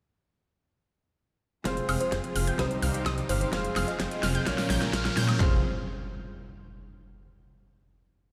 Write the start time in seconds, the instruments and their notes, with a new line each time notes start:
1.64 detuned saw bass F1, string section C3 F3 G#3 F4 G#4, grand piano G#3 C4 F4 C5, supersaw synth C4 F4 G#4 C5 F5, synth pluck F6, kick, snare, closed hi-hat, riser
1.77 closed hi-hat
1.89 detuned saw bass F1, supersaw synth C4 F4 G#4 C5 F5, synth pluck F6, open hi-hat, high woodblock
2.00 fm electric piano C5, closed hi-hat
2.12 detuned saw bass F1, supersaw synth C4 F4 G#4 C5 G5, synth pluck G6, kick, snare, closed hi-hat
2.24 closed hi-hat
2.36 detuned saw bass F1, supersaw synth C4 F4 G#4 C5 F5, synth pluck F6, open hi-hat
2.47 supersaw synth C4 F4 G#4 C5 G5, synth pluck G6, closed hi-hat
2.58 detuned saw bass C2, grand piano C3 G3 C4 D#4 C5, string section D#3 G3 D#4 G4, supersaw synth C4 D#4 G4 C5 D#5, fm electric piano C5, synth pluck D#6, kick, snare, closed hi-hat
2.71 closed hi-hat
2.82 detuned saw bass C2, supersaw synth C4 D#4 G4 C5 F5, synth pluck F6, open hi-hat
2.94 closed hi-hat
3.06 detuned saw bass C2, supersaw synth C4 D#4 G4 C5 D#5, synth pluck D#6, kick, snare, closed hi-hat, high woodblock
3.18 closed hi-hat
3.29 detuned saw bass G1, supersaw synth C4 D#4 G4 C5 F5, fm electric piano C5, synth pluck F6, open hi-hat
3.41 fm electric piano C5, closed hi-hat
3.52 detuned saw bass F1, string section C3 F3 G#3 F4 G#4, grand piano G#3 C4 F4 C5, supersaw synth C4 F4 G#4 C5 F5, synth pluck F6, kick, snare, closed hi-hat
3.64 closed hi-hat
3.76 detuned saw bass F1, supersaw synth C4 F4 G#4 C5 F5, synth pluck F6, snare, open hi-hat, high woodblock
3.88 fm electric piano D#5, closed hi-hat
4.00 detuned saw bass F1, supersaw synth C4 F4 G#4 C5 G5, synth pluck G6, kick, snare, closed hi-hat
4.11 closed hi-hat
4.23 detuned saw bass F1, supersaw synth C4 F4 G#4 C5 F5, synth pluck F6, snare, open hi-hat
4.35 supersaw synth C4 F4 G#4 C5 G5, synth pluck G6, closed hi-hat
4.45 detuned saw bass A#1, grand piano A#2 A#3 C#4 F4 C#5, string section C#3 A#3 A#4, supersaw synth C#4 F4 A#4 C#5 F5, synth pluck F6, kick, snare, closed hi-hat
4.58 snare, open hi-hat
4.70 detuned saw bass A#1, supersaw synth C#4 F4 A#4 C#5 G5, synth pluck G6, snare, open hi-hat
4.82 snare, closed hi-hat
4.93 detuned saw bass A#1, supersaw synth C#4 F4 A#4 C#5 F5, synth pluck F6, kick, snare, closed hi-hat
5.05 snare, closed hi-hat
5.17 detuned saw bass A#2, supersaw synth C#4 F4 A#4 C#5 G5, synth pluck G6, snare, open hi-hat
5.29 snare, closed hi-hat, high woodblock
5.39 detuned saw bass F1, string section C3 F3 G#3 F4 G#4, grand piano G#3 C4 F4 C5, supersaw synth C4 F4 G#4 C5 F5, synth pluck F6, kick, clap, floor tom, impact